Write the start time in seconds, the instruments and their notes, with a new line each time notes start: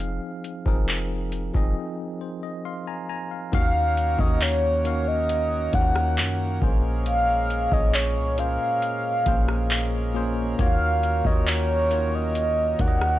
Already playing: 808-style bass F1, tine electric piano F3 C4 D#4 G#4 F5
0.00 closed hi-hat
0.44 closed hi-hat
0.65 808-style bass F1, tine electric piano F3 C4 D#4 G#4 A#4, kick
0.89 clap, closed hi-hat
1.32 closed hi-hat
1.54 808-style bass F1, tine electric piano F3 C4 D#4 G#4 D#5, kick
2.21 tine electric piano C5
2.43 tine electric piano D#5
2.65 tine electric piano F5 C6
2.87 tine electric piano G#5 A#5
3.09 tine electric piano G#5 A#5
3.31 tine electric piano F5
3.52 808-style bass D#2, tine electric piano D#3 A#3 C#4 F#4 F5, harmonium D#3 A#3 C#4 F#4, soft synth lead F5, kick, closed hi-hat
3.97 closed hi-hat
4.18 808-style bass D#2, tine electric piano D#3 A#3 C#4 F#4 C#5, soft synth lead D#5, kick
4.41 soft synth lead C#5, clap, closed hi-hat
4.84 tine electric piano D#3 A#3 C#4 F#4 F5, closed hi-hat
5.08 soft synth lead D#5
5.29 closed hi-hat
5.73 808-style bass D#2, tine electric piano D#3 A#3 C#4 F4 F#5, soft synth lead F#5, kick, closed hi-hat
5.81 tine electric piano F#4
5.96 cross-stick
6.18 808-style bass F#2, clap, closed hi-hat
6.61 808-style bass A#1, tine electric piano A#2 A#3 C#4 G#4 C5, harmonium G#3, kick
7.06 soft synth lead F5, closed hi-hat
7.50 closed hi-hat
7.71 808-style bass A#1, tine electric piano A#2 A#3 C#4 G#4 C#5, soft synth lead D#5, kick
7.94 soft synth lead C#5, clap, closed hi-hat
8.17 808-style bass C2
8.37 tine electric piano A#2 A#3 C#4 G#4 C5, soft synth lead F5, closed hi-hat
8.82 closed hi-hat
9.26 808-style bass A#1, tine electric piano A#2 A#3 C#4 G#4 C5, kick, closed hi-hat
9.48 cross-stick
9.71 clap, closed hi-hat
10.14 tine electric piano A#2 A#3 C#4 G#4 C5
10.58 808-style bass D#2, tine electric piano D#3 A#3 F4 F#4 C#5, harmonium D#3 F#3, soft synth lead F5, kick, closed hi-hat
11.03 closed hi-hat
11.24 808-style bass D#2, tine electric piano D#3 A#3 F4 F#4 C#5, soft synth lead D#5, kick
11.47 soft synth lead C#5, clap, closed hi-hat
11.90 tine electric piano D#3 A#3 F4 F#4 C#5, closed hi-hat
12.15 soft synth lead D#5
12.35 closed hi-hat
12.79 808-style bass D#2, tine electric piano D#3 A#3 D#4 F#4 D5, soft synth lead F#5, kick, closed hi-hat
12.88 tine electric piano D#5
13.01 cross-stick